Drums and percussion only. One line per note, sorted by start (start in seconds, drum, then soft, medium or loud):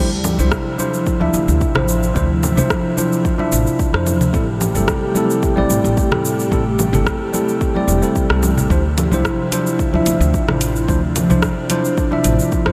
0.24 low conga medium
0.24 shaker medium
0.38 high conga medium
0.38 shaker soft
0.52 kick medium
0.52 cross-stick medium
0.52 shaker soft
0.79 high conga medium
0.79 shaker medium
0.94 shaker soft
1.06 kick medium
1.06 shaker soft
1.21 high conga medium
1.34 shaker medium
1.48 shaker soft
1.61 kick loud
1.61 shaker soft
1.75 cross-stick medium
1.75 low conga medium
1.88 shaker medium
2.03 shaker soft
2.16 kick loud
2.16 shaker soft
2.43 low conga medium
2.43 shaker medium
2.57 high conga medium
2.57 low conga medium
2.57 shaker soft
2.70 kick loud
2.70 cross-stick medium
2.70 shaker soft
2.98 high conga loud
2.98 shaker medium
3.13 shaker soft
3.25 kick loud
3.25 shaker soft
3.39 high conga medium
3.52 shaker medium
3.67 shaker soft
3.79 kick loud
3.79 shaker soft
3.94 cross-stick medium
4.07 low conga medium
4.07 shaker medium
4.21 low conga loud
4.21 shaker soft
4.34 kick loud
4.34 shaker soft
4.61 low conga medium
4.61 shaker medium
4.75 high conga medium
4.75 shaker soft
4.88 kick loud
4.88 cross-stick medium
4.88 shaker soft
5.15 high conga medium
5.15 shaker medium
5.30 shaker soft
5.43 kick loud
5.43 shaker soft
5.57 high conga medium
5.70 shaker medium
5.85 shaker soft
5.97 kick loud
5.97 shaker soft
6.12 cross-stick medium
6.12 low conga medium
6.25 shaker medium
6.40 shaker soft
6.52 kick loud
6.52 shaker soft
6.79 low conga medium
6.79 shaker medium
6.93 high conga medium
6.93 low conga medium
6.93 shaker soft
7.06 kick loud
7.06 cross-stick medium
7.06 shaker soft
7.34 high conga medium
7.34 shaker medium
7.49 shaker soft
7.61 kick loud
7.61 shaker soft
7.76 high conga medium
7.88 shaker medium
8.03 shaker soft
8.16 kick loud
8.16 shaker soft
8.30 cross-stick medium
8.43 low conga medium
8.43 shaker medium
8.58 low conga medium
8.58 shaker soft
8.70 kick loud
8.70 shaker soft
8.98 closed hi-hat medium
8.98 low conga medium
8.98 shaker medium
9.12 high conga medium
9.12 shaker soft
9.25 kick loud
9.25 cross-stick medium
9.25 shaker soft
9.52 closed hi-hat medium
9.52 high conga medium
9.52 shaker medium
9.67 shaker soft
9.79 kick loud
9.79 shaker soft
9.94 high conga medium
10.06 closed hi-hat medium
10.06 shaker medium
10.21 shaker soft
10.34 kick loud
10.34 shaker soft
10.48 cross-stick medium
10.48 low conga medium
10.61 closed hi-hat medium
10.61 shaker medium
10.76 shaker soft
10.88 kick loud
10.88 shaker soft
11.16 closed hi-hat medium
11.16 low conga medium
11.16 shaker medium
11.30 high conga medium
11.30 low conga medium
11.30 shaker soft
11.42 kick medium
11.42 cross-stick medium
11.42 shaker soft
11.70 closed hi-hat medium
11.70 high conga medium
11.70 shaker medium
11.85 shaker soft
11.98 kick medium
11.98 shaker soft
12.12 high conga medium
12.24 closed hi-hat medium
12.24 shaker medium
12.39 shaker soft
12.52 kick loud
12.52 shaker soft
12.66 cross-stick medium